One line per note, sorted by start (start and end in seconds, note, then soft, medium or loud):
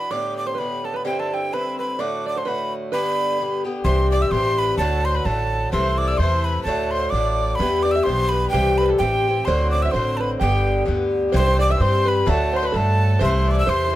0.00 0.11 E3 soft
0.00 0.11 D4 soft
0.00 0.10 F#4 soft
0.00 0.13 B5 medium
0.10 0.57 A2 medium
0.10 0.59 D3 medium
0.10 0.58 B3 medium
0.10 0.58 G4 medium
0.10 0.45 D5 medium
0.10 0.37 D6 loud
0.38 0.49 D6 medium
0.46 0.54 C5 medium
0.46 0.60 C6 medium
0.55 1.04 A2 soft
0.55 0.81 B4 medium
0.55 0.87 B5 loud
0.59 1.04 D3 soft
0.59 1.05 B3 soft
0.59 1.06 G4 medium
0.84 0.94 A4 medium
0.84 0.98 A5 medium
0.94 1.03 B4 medium
0.94 1.05 B5 medium
1.05 1.51 G2 medium
1.05 1.53 D3 medium
1.05 1.52 C4 medium
1.05 1.52 E4 medium
1.05 1.17 G4 medium
1.05 1.21 G5 medium
1.20 1.32 A4 medium
1.20 1.35 A5 medium
1.33 1.51 G4 medium
1.33 1.55 G5 medium
1.52 1.98 G2 medium
1.52 1.98 D3 soft
1.52 1.99 C4 medium
1.52 2.00 E4 medium
1.52 1.77 B4 medium
1.52 1.79 B5 medium
1.79 1.99 B4 medium
1.79 2.02 B5 medium
1.99 2.44 A2 medium
1.99 2.45 D3 medium
1.99 2.46 A3 medium
1.99 2.46 F#4 medium
1.99 2.23 D5 medium
1.99 2.26 D6 medium
2.26 2.35 D5 medium
2.26 2.39 D6 medium
2.36 2.45 C5 medium
2.36 2.49 C6 medium
2.45 2.92 A2 medium
2.45 2.92 D3 medium
2.45 2.93 A3 medium
2.45 2.93 F#4 medium
2.45 2.70 B4 medium
2.45 2.73 B5 medium
2.92 3.38 G2 medium
2.92 3.39 D3 medium
2.92 3.40 B3 medium
2.92 3.40 G4 medium
2.92 3.62 B4 medium
2.92 3.62 B5 loud
3.39 3.66 G2 medium
3.39 3.65 D3 soft
3.39 3.64 B3 medium
3.39 3.63 G4 medium
3.64 3.85 D3 medium
3.64 3.85 B3 medium
3.64 3.85 G4 medium
3.84 4.25 C2 loud
3.84 4.30 G2 medium
3.84 4.31 E3 medium
3.84 4.32 C4 medium
3.84 4.33 G4 medium
3.84 3.97 C5 medium
3.84 4.10 C6 medium
4.11 4.17 D5 loud
4.11 4.24 D6 loud
4.21 4.30 E5 medium
4.21 4.33 E6 medium
4.31 4.72 A1 medium
4.31 4.79 G2 medium
4.31 4.79 E3 medium
4.31 4.79 C4 medium
4.31 4.80 G4 medium
4.31 4.59 C5 medium
4.31 4.60 C6 loud
4.58 4.79 B4 medium
4.58 4.77 B5 loud
4.78 5.18 D2 loud
4.78 5.24 A2 medium
4.78 5.25 D3 medium
4.78 5.26 A3 medium
4.78 5.26 F#4 medium
4.78 5.06 A4 medium
4.78 5.07 A5 loud
5.05 5.18 C5 loud
5.05 5.16 C6 loud
5.15 5.28 B4 medium
5.15 5.27 B5 medium
5.25 5.65 A1 medium
5.25 5.72 A2 soft
5.25 5.73 D3 medium
5.25 5.72 A3 medium
5.25 5.73 F#4 medium
5.25 5.72 A4 medium
5.25 5.72 A5 loud
5.72 6.13 C2 loud
5.72 6.19 C3 medium
5.72 6.19 E3 medium
5.72 6.20 A3 medium
5.72 6.20 E4 medium
5.72 5.97 C5 medium
5.72 5.99 C6 loud
5.98 6.21 D5 loud
5.98 6.09 D6 loud
6.08 6.19 E6 medium
6.18 6.59 E2 medium
6.18 6.66 C3 medium
6.18 6.67 E3 medium
6.18 6.66 A3 medium
6.18 6.47 C5 medium
6.18 6.46 C6 loud
6.22 6.68 E4 medium
6.44 6.60 B4 medium
6.44 6.63 B5 loud
6.61 6.92 A4 medium
6.61 6.66 B4 medium
6.61 6.92 A5 loud
6.65 7.06 D2 medium
6.65 7.13 A2 medium
6.65 7.13 D3 medium
6.65 7.14 A3 medium
6.65 7.14 F#4 medium
6.91 7.11 C5 loud
6.91 7.12 C6 loud
7.10 7.53 A1 medium
7.10 7.60 A2 medium
7.10 7.61 D5 medium
7.10 7.57 D6 loud
7.15 7.61 D3 medium
7.15 7.61 A3 medium
7.15 7.61 F#4 medium
7.55 7.84 B5 loud
7.59 8.00 E2 medium
7.59 8.05 G2 medium
7.59 8.06 E3 medium
7.59 8.07 B3 medium
7.59 8.08 G4 loud
7.59 7.85 B4 medium
7.83 7.95 D5 medium
7.83 7.97 D5 medium
7.83 7.93 D6 loud
7.91 8.06 E5 medium
7.91 8.05 E6 medium
7.96 8.07 E5 medium
8.03 8.47 B1 medium
8.03 8.52 G2 medium
8.03 8.53 E3 medium
8.03 8.32 C5 medium
8.03 8.35 C5 medium
8.03 8.30 C6 loud
8.08 8.54 B3 medium
8.08 8.53 G4 medium
8.29 8.53 B4 medium
8.29 8.49 B5 loud
8.33 8.54 B4 medium
8.50 8.93 C2 medium
8.50 8.99 G2 medium
8.50 8.78 G4 medium
8.50 8.79 G5 loud
8.54 9.00 E3 medium
8.54 9.00 C4 medium
8.54 9.01 G4 medium
8.78 8.90 B4 medium
8.78 8.91 B4 medium
8.78 8.86 B5 medium
8.86 9.00 A4 medium
8.86 8.99 A4 medium
8.86 8.88 B5 medium
8.98 9.40 A1 medium
8.98 9.27 G2 medium
8.98 9.27 E3 medium
8.98 9.28 C4 medium
8.98 9.47 G4 medium
8.98 9.48 G4 medium
8.98 9.47 G5 loud
9.03 9.26 G4 medium
9.28 9.47 E3 soft
9.28 9.47 C4 soft
9.28 9.47 G4 medium
9.45 9.87 D2 loud
9.45 9.92 A2 medium
9.45 9.93 D3 medium
9.45 9.94 C4 medium
9.45 9.94 F#4 loud
9.45 9.75 C5 medium
9.45 9.72 C5 medium
9.45 9.70 C6 medium
9.71 9.83 D5 medium
9.71 9.84 D5 medium
9.71 9.84 D6 loud
9.82 9.92 E5 medium
9.82 9.94 E5 medium
9.82 9.93 E6 medium
9.92 10.34 A1 medium
9.92 10.40 A2 medium
9.92 10.41 D3 medium
9.92 10.41 C4 medium
9.92 10.27 C5 medium
9.92 10.18 C5 medium
9.92 10.19 C6 medium
9.96 10.41 F#4 medium
10.17 10.29 B4 medium
10.17 10.22 A5 medium
10.17 10.30 B5 medium
10.39 10.81 G1 loud
10.39 10.84 G2 medium
10.39 10.85 D3 medium
10.39 10.87 B3 medium
10.39 10.83 G4 medium
10.39 10.84 G4 medium
10.39 10.87 G4 medium
10.39 10.84 G5 medium
10.86 11.27 D2 medium
10.86 11.31 G2 medium
10.86 11.33 D3 medium
10.86 11.33 B3 medium
10.86 11.33 G4 medium
11.29 11.78 G2 medium
11.29 11.39 C5 medium
11.29 11.36 D5 medium
11.33 11.74 C2 loud
11.33 11.80 E3 medium
11.33 11.79 C4 medium
11.33 11.80 G4 loud
11.33 11.62 C5 medium
11.33 11.60 C6 loud
11.40 11.45 C5 medium
11.47 11.59 C5 medium
11.59 11.69 D5 medium
11.59 11.73 D5 loud
11.59 11.73 D6 loud
11.70 11.80 E5 medium
11.70 11.83 E6 medium
11.79 12.26 G2 soft
11.79 12.20 G2 medium
11.79 12.27 E3 medium
11.79 12.27 C4 medium
11.79 12.27 G4 medium
11.79 12.09 C5 medium
11.79 12.05 C5 medium
11.79 12.10 C6 loud
12.05 12.25 B4 medium
12.05 12.31 B5 loud
12.23 12.67 D2 loud
12.23 12.72 A2 medium
12.23 12.74 D3 medium
12.23 12.75 A3 medium
12.23 12.74 F#4 medium
12.23 12.28 G4 medium
12.23 12.52 A4 medium
12.23 12.54 A4 medium
12.30 12.58 A5 loud
12.53 12.63 C5 medium
12.53 12.66 C5 loud
12.53 12.68 C6 loud
12.63 12.72 B4 medium
12.63 12.78 B4 medium
12.67 12.78 B5 medium
12.72 13.14 G2 loud
12.72 13.20 A2 medium
12.72 13.20 D3 medium
12.72 13.20 A3 medium
12.72 13.16 A4 medium
12.76 13.22 F#4 medium
12.76 13.23 A4 medium
12.76 13.22 A5 loud
13.19 13.61 C2 loud
13.19 13.67 C3 medium
13.19 13.67 E3 medium
13.19 13.67 A3 medium
13.19 13.68 E4 medium
13.19 13.63 C5 medium
13.19 13.49 C5 medium
13.24 13.52 C6 loud
13.48 13.67 D5 loud
13.48 13.59 D6 loud
13.59 13.71 E6 loud
13.67 13.95 E2 medium
13.67 13.94 C3 medium
13.67 13.95 E3 medium
13.67 13.95 A3 medium
13.67 13.93 E4 medium
13.67 13.85 C5 medium
13.67 13.95 C5 medium
13.67 13.95 C6 loud
13.87 13.93 C5 medium